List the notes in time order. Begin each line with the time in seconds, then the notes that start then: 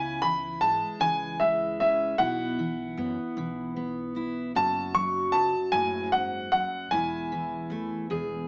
Already playing: C#2 C#3 E4 G#5
0.21 E3 B5
0.61 G#1 G#3 A5
1.00 C#2 E3 G#5
1.40 G#3 E5
1.80 C#4 E5
2.18 B1 B2 E4 F#5
2.59 E3
2.97 F#2 B3
3.37 B1 E3
3.76 B3
4.16 E4
4.55 F#1 F#2 F#4 A5
4.95 F#3 C#6
5.32 C#2 A5
5.72 F#1 A2 G#5
6.12 G#2 F#5
6.52 F#2 F#5
6.91 E1 E2 E4 G#5
7.32 E3
7.70 E2 A3
8.10 E1 E2 G#4